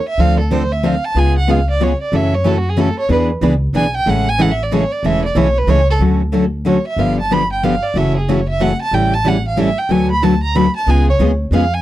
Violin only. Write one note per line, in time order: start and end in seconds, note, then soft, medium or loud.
0.08 0.22 E5 medium
0.20 0.39 F5 loud
0.40 0.54 A4 soft
0.52 0.73 C5 medium
0.72 0.87 E5 medium
0.85 1.06 F5 medium
1.05 1.20 A5 medium
1.18 1.36 G#5 medium
1.38 1.52 F#5 medium
1.50 1.69 F5 medium
1.70 1.84 D5 medium
1.83 2.01 C#5 medium
2.02 2.17 D5 medium
2.15 2.36 E5 medium
2.35 2.48 C#5 medium
2.47 2.59 A4 medium
2.58 2.71 F#4 medium
2.69 2.82 G#4 medium
2.80 2.98 A4 medium
2.99 3.10 C#5 medium
3.12 3.23 B4 medium
3.76 3.93 G#5 medium
3.96 4.11 G5 loud
4.10 4.30 F#5 medium
4.29 4.43 G#5 loud
4.41 4.53 F#5 medium
4.51 4.64 E5 medium
4.63 4.75 D5 medium
4.74 4.93 C#5 medium
4.92 5.07 D5 medium
5.05 5.24 E5 loud
5.25 5.39 D5 medium
5.37 5.59 C#5 medium
5.58 5.71 B4 medium
5.69 5.88 C#5 loud
5.90 5.97 A4 medium
6.67 6.84 C#5 medium
6.87 7.01 E5 medium
7.00 7.18 F5 medium
7.20 7.34 A5 medium
7.33 7.51 B5 loud
7.52 7.65 G5 medium
7.64 7.84 F5 medium
7.83 7.99 D5 medium
7.98 8.16 E5 medium
8.17 8.30 G#4 medium
8.29 8.48 C#5 medium
8.49 8.63 E5 medium
8.61 8.80 F#5 medium
8.82 8.95 A5 loud
8.94 9.15 G5 medium
9.14 9.29 A5 loud
9.28 9.46 F#5 medium
9.48 9.61 F5 medium
9.60 9.80 E5 medium
9.78 9.92 G5 medium
9.91 10.10 G#5 medium
10.11 10.25 B5 loud
10.23 10.42 A5 medium
10.43 10.57 A#5 medium
10.56 10.75 B5 medium
10.76 10.91 A5 medium
10.90 11.08 G#5 medium
11.10 11.16 C#5 medium
11.54 11.76 F5 medium
11.74 11.82 G#5 medium